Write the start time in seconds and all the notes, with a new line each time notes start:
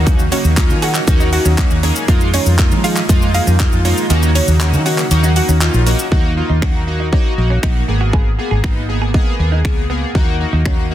Already playing: D#2 C#3 F#3 A#3 C#4 D#4 F#4
0.07 D#4, kick, closed hi-hat, shaker
0.19 muted clean electric guitar stroke, shaker
0.32 A#3 C#4 D#4 F#4 C#5, open hi-hat, shaker
0.44 D#2, shaker
0.57 A#3 C#4 D#4 F4, muted clean electric guitar stroke, kick, clap, closed hi-hat, shaker
0.70 D#3, shaker
0.82 A#3 C#4 D#4 F#4 G#4 F#5, open hi-hat, shaker
0.95 F#4, clap, shaker
1.07 D#2 A#3 C#4 D#4 F#4, kick, closed hi-hat, shaker
1.20 D#4, shaker
1.33 A#3 C#4 D#4 F#4 F#5, muted clean electric guitar stroke, open hi-hat, shaker
1.45 D#2 C#4, shaker
1.58 A#3 C#4 D#4 F#4, kick, clap, closed hi-hat, shaker
1.71 D#2, shaker
1.83 A#3 C#4 D#4 G#4, open hi-hat, shaker
1.96 shaker
2.08 F2 D#3 G#3 A#3 D#4 F4, kick, closed hi-hat, shaker
2.21 muted clean electric guitar stroke, shaker
2.33 G#3 A#3 C#4 D#4 F4 C#5, open hi-hat, shaker
2.46 F2, shaker
2.59 G#3 A#3 D#4 F4, kick, clap, closed hi-hat, shaker
2.71 F3, shaker
2.84 G#3 A#3 D#4 F4 G#4 F5, open hi-hat, shaker
2.96 clap, shaker
3.09 F2 G#3 A#3 D#4 F4, muted clean electric guitar stroke, kick, closed hi-hat, shaker
3.22 shaker
3.34 G#3 A#3 D#4 F4 G#4 F5, open hi-hat, shaker
3.47 F2 C#4, shaker
3.59 G#3 D#4 F4, kick, clap, closed hi-hat, shaker
3.72 F2, shaker
3.85 G#3 A#3 C#4 D#4 F4, open hi-hat, shaker
3.97 shaker
4.10 D#2 C#3 F#3 A#3 C#4 D#4 F#4, closed hi-hat, shaker
4.23 muted clean electric guitar stroke, shaker
4.35 A#3 C#4 D#4 F#4 C#5, open hi-hat, shaker
4.48 D#2, shaker
4.60 A#3 C#4 D#4 F#4, muted clean electric guitar stroke, clap, closed hi-hat, shaker
4.73 D#3, shaker
4.86 A#3 C#4 D#4 F#4 F#5, open hi-hat, shaker
4.98 A#3, clap, shaker
5.11 D#2 A#3 C#4 D#4 F#4, closed hi-hat, shaker
5.23 D#4, shaker
5.36 A#3 C#4 D#4 F#4 F#5, muted clean electric guitar stroke, open hi-hat, shaker
5.49 D#2 C#4, shaker
5.61 A#3 C#4 D#4 F4, clap, closed hi-hat, shaker
5.74 A#1, shaker
5.86 A#3 C#4 D#4 F#4, open hi-hat, shaker
5.99 shaker
6.12 D#2 A#3 D#4 F#4, kick
6.37 A#3 D#4 F4, muted clean electric guitar stroke
6.49 D#2 D#4
6.62 A#3 C#4 D#4 F#4, finger snap, kick
6.87 A#3 D#4 F#4, muted clean electric guitar stroke
7.00 D#4
7.12 A#3 C#4 D#4 F#4, kick
7.38 A#1 A#3 D#4 F#4, muted clean electric guitar stroke
7.50 C#4
7.63 A#1 A#3 D#4, finger snap, kick
7.88 G#1 A#3 B3 G#4, muted clean electric guitar stroke
8.01 F#4
8.13 G#4, kick
8.39 A#3 B3 G#4, muted clean electric guitar stroke
8.51 G#1 G#4
8.64 A#3 B3 D#4 F#4, finger snap, kick
8.89 A#3 B3 G#4, muted clean electric guitar stroke
9.02 G#4
9.14 A#3 B3 D#4 G#4, kick
9.39 D#2 A#3 B3 G#4, muted clean electric guitar stroke
9.52 D#4
9.64 C#2 A#3 B3, finger snap, kick
9.90 A#3 B3 G#4
10.15 D#2 A#3 D#4 F#4, kick
10.40 A#3 D#4 F#4, muted clean electric guitar stroke
10.53 D#2 D#4
10.65 C#4, finger snap, kick
10.91 A#3 D#4 F#4, muted clean electric guitar stroke